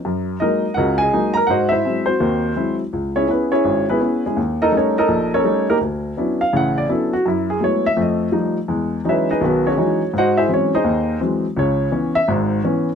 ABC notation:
X:1
M:4/4
L:1/8
Q:"Swing" 1/4=167
K:C#m
V:1 name="Grand piano"
z2 [^Ad]2 [FAdf] [Gdg]2 [A^a] | [F^Bdf] [EBe]2 [^B,FB]4 z | z [CEGc] [B,GB] [CEGc]2 [B,EGB]2 [G,CEG] | z [DA^Ad] [C=A^Ac] [D=A^Ad]2 [C=A^Ac]2 [^A,D=GA] |
z3 ^e f =d A F | E G c e _e2 z2 | z2 [EBce] [DGBd] [B,FGB] [CFGc]3 | [F^Bdf] [EGBe] [Cc] [DGBd]3 z2 |
c3 e z4 |]
V:2 name="Grand piano" clef=bass
F,,2 [F,G,^A,D] z [C,,C,]2 [F,G,A,D] z | G,,2 [F,G,^B,E] z [D,,D,]2 [F,G,B,E] z | C,,2 [B,CE] z G,,,2 [B,CE] z | D,,2 [=G,A,CD] z ^A,,,2 [G,=A,CD] z |
=D,,2 [F,B,C=DE] z [A,,,C,]2 [F,B,CDE] z | F,,2 [F,G,A,B,E] z [=F,,A,]2 [=F,=G,A,_E] z | [E,,G,]2 [E,F,G,CD] z [B,,,D,]2 [E,F,G,CD] z | G,,2 [E,F,G,^B,] z D,,2 [E,F,G,B,] z |
[C,,C,]2 [E,B,C] z [G,,,G,,]2 [E,B,C] z |]